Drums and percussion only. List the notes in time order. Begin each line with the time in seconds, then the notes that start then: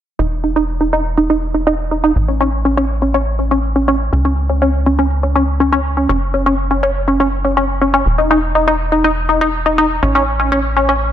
0.19 closed hi-hat
0.31 closed hi-hat
0.44 closed hi-hat
0.56 closed hi-hat
0.68 closed hi-hat
0.81 closed hi-hat
0.93 closed hi-hat
1.05 closed hi-hat
1.18 closed hi-hat
1.30 closed hi-hat
1.42 closed hi-hat
1.54 closed hi-hat
1.67 closed hi-hat
1.79 closed hi-hat
1.91 closed hi-hat
2.16 closed hi-hat
2.28 closed hi-hat
2.40 closed hi-hat
2.53 closed hi-hat
2.65 closed hi-hat
2.90 closed hi-hat
3.02 closed hi-hat
3.14 closed hi-hat
3.27 closed hi-hat
3.39 closed hi-hat
3.51 closed hi-hat
3.64 closed hi-hat
3.76 closed hi-hat
3.88 closed hi-hat
4.13 closed hi-hat
4.25 closed hi-hat
4.37 closed hi-hat
4.50 closed hi-hat
4.62 closed hi-hat
4.74 closed hi-hat
4.86 closed hi-hat
4.99 closed hi-hat
5.11 closed hi-hat
5.23 closed hi-hat
5.36 closed hi-hat
5.48 closed hi-hat
5.60 closed hi-hat
5.85 closed hi-hat
6.09 closed hi-hat
6.22 closed hi-hat
6.34 closed hi-hat
6.59 closed hi-hat
6.71 closed hi-hat
6.83 closed hi-hat
6.95 closed hi-hat
7.08 closed hi-hat
7.20 closed hi-hat
7.32 closed hi-hat
7.45 closed hi-hat
7.57 closed hi-hat
7.69 closed hi-hat
7.82 closed hi-hat
8.06 closed hi-hat
8.18 closed hi-hat
8.31 closed hi-hat
8.43 closed hi-hat
8.55 closed hi-hat
8.80 closed hi-hat
8.92 closed hi-hat
9.04 closed hi-hat
9.17 closed hi-hat
9.29 closed hi-hat
9.54 closed hi-hat
9.66 closed hi-hat
10.03 closed hi-hat
10.27 closed hi-hat
10.40 closed hi-hat
10.64 closed hi-hat
10.76 closed hi-hat
11.01 closed hi-hat